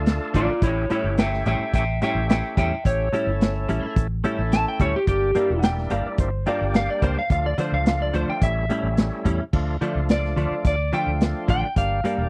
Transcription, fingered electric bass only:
0, 0, Header, 1, 3, 480
1, 0, Start_track
1, 0, Key_signature, -1, "minor"
1, 0, Tempo, 557103
1, 533, Time_signature, 4, 2, 24, 8
1, 10591, End_track
2, 0, Start_track
2, 0, Title_t, "Fingered electric bass"
2, 0, Program_c, 0, 33
2, 0, Note_on_c, 0, 38, 86
2, 155, Note_off_c, 0, 38, 0
2, 298, Note_on_c, 0, 33, 75
2, 408, Note_off_c, 0, 33, 0
2, 534, Note_on_c, 0, 33, 85
2, 753, Note_off_c, 0, 33, 0
2, 895, Note_on_c, 0, 31, 78
2, 1222, Note_off_c, 0, 31, 0
2, 1256, Note_on_c, 0, 33, 75
2, 1367, Note_off_c, 0, 33, 0
2, 1493, Note_on_c, 0, 33, 90
2, 1712, Note_off_c, 0, 33, 0
2, 1851, Note_on_c, 0, 33, 93
2, 2072, Note_off_c, 0, 33, 0
2, 2216, Note_on_c, 0, 40, 87
2, 2327, Note_off_c, 0, 40, 0
2, 2457, Note_on_c, 0, 33, 90
2, 2674, Note_off_c, 0, 33, 0
2, 2815, Note_on_c, 0, 31, 79
2, 3142, Note_off_c, 0, 31, 0
2, 3178, Note_on_c, 0, 33, 85
2, 3287, Note_off_c, 0, 33, 0
2, 3414, Note_on_c, 0, 33, 90
2, 3633, Note_off_c, 0, 33, 0
2, 3779, Note_on_c, 0, 33, 92
2, 3997, Note_off_c, 0, 33, 0
2, 4133, Note_on_c, 0, 38, 77
2, 4244, Note_off_c, 0, 38, 0
2, 4372, Note_on_c, 0, 31, 90
2, 4592, Note_off_c, 0, 31, 0
2, 4741, Note_on_c, 0, 28, 73
2, 5065, Note_off_c, 0, 28, 0
2, 5096, Note_on_c, 0, 31, 82
2, 5206, Note_off_c, 0, 31, 0
2, 5329, Note_on_c, 0, 31, 90
2, 5550, Note_off_c, 0, 31, 0
2, 5699, Note_on_c, 0, 31, 85
2, 5916, Note_off_c, 0, 31, 0
2, 6049, Note_on_c, 0, 37, 82
2, 6163, Note_off_c, 0, 37, 0
2, 6291, Note_on_c, 0, 38, 89
2, 6511, Note_off_c, 0, 38, 0
2, 6652, Note_on_c, 0, 37, 73
2, 6981, Note_off_c, 0, 37, 0
2, 7013, Note_on_c, 0, 38, 90
2, 7125, Note_off_c, 0, 38, 0
2, 7252, Note_on_c, 0, 33, 94
2, 7472, Note_off_c, 0, 33, 0
2, 7609, Note_on_c, 0, 33, 91
2, 7832, Note_off_c, 0, 33, 0
2, 7971, Note_on_c, 0, 40, 83
2, 8085, Note_off_c, 0, 40, 0
2, 8213, Note_on_c, 0, 38, 80
2, 8433, Note_off_c, 0, 38, 0
2, 8575, Note_on_c, 0, 37, 76
2, 8903, Note_off_c, 0, 37, 0
2, 8930, Note_on_c, 0, 38, 77
2, 9044, Note_off_c, 0, 38, 0
2, 9175, Note_on_c, 0, 38, 91
2, 9395, Note_off_c, 0, 38, 0
2, 9536, Note_on_c, 0, 38, 91
2, 9757, Note_off_c, 0, 38, 0
2, 9895, Note_on_c, 0, 33, 84
2, 10008, Note_off_c, 0, 33, 0
2, 10136, Note_on_c, 0, 31, 91
2, 10357, Note_off_c, 0, 31, 0
2, 10496, Note_on_c, 0, 28, 72
2, 10591, Note_off_c, 0, 28, 0
2, 10591, End_track
3, 0, Start_track
3, 0, Title_t, "Muted fingered electric bass strokes"
3, 3304, Note_on_c, 9, 29, 37
3, 3390, Note_off_c, 9, 29, 0
3, 6528, Note_on_c, 9, 29, 33
3, 6615, Note_off_c, 9, 29, 0
3, 8452, Note_on_c, 9, 29, 31
3, 8538, Note_off_c, 9, 29, 0
3, 10591, End_track
0, 0, End_of_file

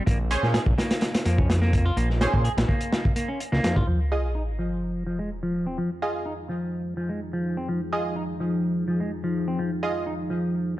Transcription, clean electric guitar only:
0, 0, Header, 1, 2, 480
1, 0, Start_track
1, 0, Key_signature, -4, "minor"
1, 0, Tempo, 476190
1, 70, Time_signature, 4, 2, 24, 8
1, 10882, End_track
2, 0, Start_track
2, 0, Title_t, "Clean electric guitar"
2, 0, Program_c, 0, 27
2, 65, Note_on_c, 0, 58, 87
2, 177, Note_off_c, 0, 58, 0
2, 545, Note_on_c, 0, 68, 81
2, 613, Note_off_c, 0, 68, 0
2, 784, Note_on_c, 0, 58, 74
2, 1255, Note_off_c, 0, 58, 0
2, 1266, Note_on_c, 0, 58, 81
2, 1387, Note_off_c, 0, 58, 0
2, 1391, Note_on_c, 0, 61, 75
2, 1493, Note_off_c, 0, 61, 0
2, 1630, Note_on_c, 0, 58, 98
2, 1860, Note_off_c, 0, 58, 0
2, 1871, Note_on_c, 0, 65, 72
2, 1981, Note_off_c, 0, 65, 0
2, 1983, Note_on_c, 0, 58, 87
2, 2096, Note_off_c, 0, 58, 0
2, 2463, Note_on_c, 0, 68, 82
2, 2532, Note_off_c, 0, 68, 0
2, 2704, Note_on_c, 0, 58, 76
2, 3175, Note_off_c, 0, 58, 0
2, 3185, Note_on_c, 0, 58, 81
2, 3307, Note_off_c, 0, 58, 0
2, 3311, Note_on_c, 0, 61, 72
2, 3413, Note_off_c, 0, 61, 0
2, 3550, Note_on_c, 0, 58, 95
2, 3780, Note_off_c, 0, 58, 0
2, 3792, Note_on_c, 0, 65, 73
2, 3902, Note_off_c, 0, 65, 0
2, 3906, Note_on_c, 0, 53, 84
2, 4017, Note_off_c, 0, 53, 0
2, 4385, Note_on_c, 0, 63, 80
2, 4453, Note_off_c, 0, 63, 0
2, 4625, Note_on_c, 0, 53, 72
2, 5095, Note_off_c, 0, 53, 0
2, 5106, Note_on_c, 0, 53, 70
2, 5227, Note_off_c, 0, 53, 0
2, 5231, Note_on_c, 0, 56, 72
2, 5333, Note_off_c, 0, 56, 0
2, 5472, Note_on_c, 0, 53, 89
2, 5701, Note_off_c, 0, 53, 0
2, 5712, Note_on_c, 0, 60, 67
2, 5822, Note_off_c, 0, 60, 0
2, 5826, Note_on_c, 0, 53, 84
2, 5938, Note_off_c, 0, 53, 0
2, 6307, Note_on_c, 0, 63, 82
2, 6374, Note_off_c, 0, 63, 0
2, 6546, Note_on_c, 0, 53, 72
2, 7016, Note_off_c, 0, 53, 0
2, 7026, Note_on_c, 0, 53, 75
2, 7147, Note_off_c, 0, 53, 0
2, 7150, Note_on_c, 0, 56, 66
2, 7252, Note_off_c, 0, 56, 0
2, 7392, Note_on_c, 0, 53, 94
2, 7621, Note_off_c, 0, 53, 0
2, 7633, Note_on_c, 0, 60, 71
2, 7742, Note_off_c, 0, 60, 0
2, 7748, Note_on_c, 0, 53, 80
2, 7858, Note_off_c, 0, 53, 0
2, 8228, Note_on_c, 0, 63, 81
2, 8294, Note_off_c, 0, 63, 0
2, 8470, Note_on_c, 0, 53, 70
2, 8938, Note_off_c, 0, 53, 0
2, 8948, Note_on_c, 0, 53, 72
2, 9068, Note_off_c, 0, 53, 0
2, 9074, Note_on_c, 0, 56, 68
2, 9174, Note_off_c, 0, 56, 0
2, 9312, Note_on_c, 0, 53, 94
2, 9541, Note_off_c, 0, 53, 0
2, 9553, Note_on_c, 0, 60, 69
2, 9662, Note_off_c, 0, 60, 0
2, 9665, Note_on_c, 0, 53, 80
2, 9777, Note_off_c, 0, 53, 0
2, 10145, Note_on_c, 0, 63, 75
2, 10213, Note_off_c, 0, 63, 0
2, 10383, Note_on_c, 0, 53, 75
2, 10855, Note_off_c, 0, 53, 0
2, 10882, End_track
0, 0, End_of_file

